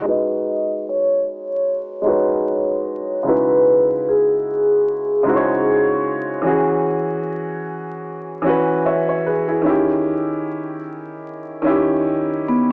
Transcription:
0.01 1.16 G#3 medium
0.01 1.18 D#4 medium
0.06 1.19 F#4 medium
0.06 1.20 B4 medium
0.06 0.84 D#5 medium
0.89 3.24 C#5 medium
2.02 2.88 G#3 medium
2.02 2.89 D#4 medium
2.06 2.90 F#4 medium
2.06 2.92 B4 medium
3.23 4.37 C#3 medium
3.23 4.38 G#3 medium
3.23 4.39 D#4 medium
3.27 4.39 E4 medium
3.27 4.40 F#4 medium
3.27 4.10 B4 medium
3.27 4.41 B4 medium
4.09 6.03 G#4 medium
5.23 6.09 C#3 medium
5.23 6.09 G#3 medium
5.23 6.10 D#4 medium
5.23 6.11 E4 medium
5.28 6.11 F#4 medium
5.28 5.35 C5 medium
5.36 6.15 C#5 medium
6.42 7.57 E3 medium
6.42 7.58 C#4 medium
6.47 7.59 F#4 medium
6.47 7.60 G#4 medium
8.42 9.28 E3 medium
8.42 9.29 C#4 medium
8.46 8.86 F#4 medium
8.46 8.87 B4 medium
8.86 9.07 C#5 medium
8.86 9.07 E5 medium
9.09 9.25 C#5 medium
9.26 9.46 G#4 medium
9.26 9.48 B4 medium
9.48 9.64 E4 medium
9.48 9.86 G#4 medium
9.61 10.76 D#3 medium
9.61 10.78 C#4 medium
9.66 10.79 E4 medium
9.66 10.80 G4 medium
11.62 12.48 D#3 medium
11.62 12.49 C#4 medium
11.66 12.50 E4 medium
11.66 12.52 G4 medium
12.48 12.68 B3 medium

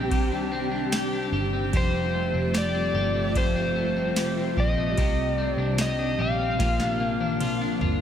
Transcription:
0.00 0.11 A#1 medium
0.00 1.70 D#3 medium
0.00 1.70 G3 medium
0.00 0.51 C4 medium
0.00 1.69 C4 medium
0.00 0.30 D4 medium
0.00 1.70 D4 medium
0.00 0.11 G4 medium
0.00 1.30 G4 medium
0.00 6.56 G4 medium
0.11 1.29 C2 loud
0.11 1.81 C3 medium
0.11 0.92 G4 medium
0.11 kick loud
0.11 ride medium
0.32 0.70 D4 medium
0.52 1.53 C4 medium
0.71 1.11 D4 medium
0.92 1.33 G4 medium
0.92 snare loud
0.92 ride medium
0.92 tambourine medium
1.12 1.81 D4 medium
1.32 1.71 G1 medium
1.32 1.74 G4 medium
1.53 1.94 C4 medium
1.73 2.31 F1 loud
1.73 3.34 F2 medium
1.73 6.56 C3 medium
1.73 6.56 G3 medium
1.73 4.94 A3 medium
1.73 4.94 F4 medium
1.73 2.53 G4 medium
1.73 2.59 C5 medium
1.73 kick loud
1.73 ride medium
1.94 2.33 C4 medium
2.14 3.14 A3 medium
2.34 2.92 F1 medium
2.34 2.74 C4 medium
2.54 2.94 G4 medium
2.54 3.39 D5 medium
2.54 snare loud
2.54 ride soft
2.54 tambourine medium
2.74 3.55 C4 medium
2.94 4.16 G1 medium
2.94 3.35 G4 medium
3.15 3.75 A3 medium
3.35 5.06 F2 medium
3.35 4.17 G4 medium
3.35 4.62 C5 medium
3.35 kick medium
3.35 ride medium
3.56 3.96 C4 medium
3.76 4.76 A3 medium
3.96 4.37 C4 medium
4.16 4.55 F1 loud
4.16 4.57 G4 medium
4.16 snare loud
4.16 ride medium
4.16 tambourine medium
4.37 5.06 C4 medium
4.57 4.95 A#1 medium
4.57 4.97 G4 medium
4.57 5.41 D#5 loud
4.57 kick medium
4.78 5.06 A3 medium
4.97 5.55 C2 loud
4.97 6.59 C3 medium
4.97 6.58 D#3 medium
4.97 8.01 C4 medium
4.97 5.77 G4 medium
4.97 kick loud
4.97 ride medium
5.38 6.38 C4 medium
5.38 5.80 D5 loud
5.57 6.16 C2 medium
5.57 5.98 D4 medium
5.78 6.18 G4 medium
5.78 6.21 D#5 loud
5.78 snare loud
5.78 ride medium
5.78 tambourine medium
5.99 6.68 D4 medium
6.19 6.57 A#1 loud
6.19 6.59 G4 medium
6.19 7.79 F5 loud
6.39 6.68 C4 medium
6.59 7.77 A#1 medium
6.59 8.01 A#2 medium
6.59 8.01 D3 medium
6.59 8.01 F3 medium
6.59 8.01 F4 medium
6.59 7.40 F4 medium
6.59 kick loud
6.59 snare medium
6.59 ride medium
6.80 7.19 D4 medium
6.80 snare medium
7.00 8.00 A#3 medium
7.20 7.60 D4 medium
7.20 high tom medium
7.40 7.81 F4 medium
7.40 mid tom medium
7.40 ride medium
7.61 8.01 D4 medium
7.81 8.01 G1 medium
7.81 8.01 F4 medium
7.81 floor tom loud

